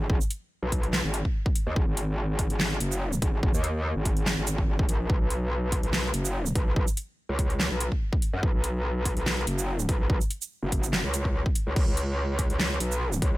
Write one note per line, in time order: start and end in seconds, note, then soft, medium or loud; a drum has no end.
0.10 0.19 G#1 loud
0.10 kick loud
0.21 shaker medium
0.31 closed hi-hat medium
0.63 1.02 B1 loud
0.72 kick medium
0.72 closed hi-hat medium
0.83 closed hi-hat soft
0.93 snare loud
0.93 clap medium
1.04 1.23 G#1 loud
1.14 closed hi-hat medium
1.25 kick medium
1.46 kick loud
1.55 closed hi-hat medium
1.67 1.75 D#2 medium
1.76 1.86 G#1 medium
1.76 kick loud
1.87 2.48 G#1 loud
1.97 closed hi-hat medium
2.39 kick medium
2.39 closed hi-hat medium
2.50 2.79 G#1 medium
2.50 closed hi-hat soft
2.60 snare loud
2.60 clap medium
2.80 3.21 F#1 loud
2.80 closed hi-hat medium
2.92 shaker medium
3.13 shaker medium
3.22 3.41 G#1 loud
3.22 kick loud
3.22 closed hi-hat medium
3.43 3.52 G#1 medium
3.43 kick loud
3.54 3.94 D#2 medium
3.54 shaker medium
3.64 closed hi-hat medium
3.96 4.36 G#1 loud
4.05 kick medium
4.05 closed hi-hat medium
4.17 closed hi-hat soft
4.26 snare loud
4.26 clap medium
4.38 4.66 G#1 loud
4.47 closed hi-hat medium
4.47 shaker medium
4.58 kick medium
4.68 4.87 G#1 loud
4.79 kick loud
4.89 5.08 A#1 loud
4.89 closed hi-hat medium
5.10 5.19 B1 loud
5.10 kick loud
5.21 5.82 B1 loud
5.30 closed hi-hat medium
5.72 kick medium
5.72 closed hi-hat medium
5.83 6.12 B1 loud
5.83 closed hi-hat soft
5.93 snare loud
5.93 clap medium
6.14 6.54 F#1 loud
6.14 closed hi-hat medium
6.25 shaker medium
6.46 shaker medium
6.55 6.75 B1 loud
6.55 kick loud
6.55 closed hi-hat medium
6.76 6.86 B1 loud
6.76 kick loud
6.88 shaker medium
6.97 closed hi-hat medium
7.29 7.69 C#2 loud
7.39 kick medium
7.39 closed hi-hat medium
7.50 closed hi-hat soft
7.60 snare loud
7.60 clap medium
7.71 7.90 B1 loud
7.80 closed hi-hat medium
7.92 kick medium
8.13 kick loud
8.22 closed hi-hat medium
8.33 8.41 F#2 loud
8.43 8.52 B1 loud
8.43 kick loud
8.54 9.15 B1 loud
8.64 closed hi-hat medium
9.05 kick medium
9.05 closed hi-hat medium
9.17 9.46 B1 medium
9.17 closed hi-hat soft
9.26 snare loud
9.26 clap medium
9.47 9.87 F#1 medium
9.47 closed hi-hat medium
9.58 shaker medium
9.79 shaker medium
9.89 10.08 B1 loud
9.89 kick loud
9.89 closed hi-hat medium
10.10 10.19 B1 medium
10.10 kick loud
10.21 shaker medium
10.31 closed hi-hat medium
10.42 shaker medium
10.63 11.02 F#1 medium
10.72 kick medium
10.72 closed hi-hat medium
10.83 closed hi-hat soft
10.83 shaker medium
10.93 snare loud
10.93 clap medium
11.04 11.44 C#2 loud
11.14 closed hi-hat medium
11.14 shaker medium
11.25 kick medium
11.46 kick loud
11.55 closed hi-hat medium
11.67 11.75 C#2 loud
11.76 11.86 C#2 loud
11.76 kick loud
11.76 crash medium
11.87 12.48 C#2 loud
11.97 closed hi-hat medium
12.39 kick medium
12.39 closed hi-hat medium
12.50 12.79 C#2 loud
12.50 closed hi-hat soft
12.60 snare loud
12.60 clap loud
12.80 13.21 B1 loud
12.80 closed hi-hat medium
12.92 shaker medium
13.13 shaker medium
13.22 13.37 C#2 medium
13.22 kick loud
13.22 closed hi-hat medium